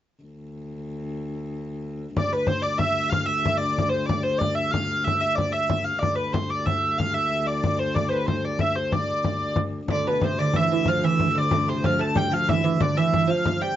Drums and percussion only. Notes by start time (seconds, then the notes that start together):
2.17 frame drum
2.32 frame drum
2.47 frame drum
2.79 frame drum
3.12 frame drum
3.29 frame drum
3.45 frame drum
3.78 frame drum
4.09 frame drum
4.41 frame drum
4.74 frame drum
5.07 frame drum
5.23 frame drum
5.38 frame drum
5.70 frame drum
6.03 frame drum
6.18 frame drum
6.34 frame drum
6.67 frame drum
7.00 frame drum
7.15 frame drum
7.64 frame drum
7.96 frame drum
8.13 frame drum
8.28 frame drum
8.59 frame drum
8.92 frame drum
9.10 frame drum
9.24 frame drum
9.42 frame drum
9.56 frame drum
9.72 frame drum
9.88 frame drum
10.05 frame drum
10.21 frame drum
10.53 frame drum
10.85 frame drum
11.20 frame drum
11.51 frame drum
11.84 frame drum
12.00 frame drum
12.16 frame drum
12.49 frame drum
12.80 frame drum
13.13 frame drum
13.29 frame drum
13.45 frame drum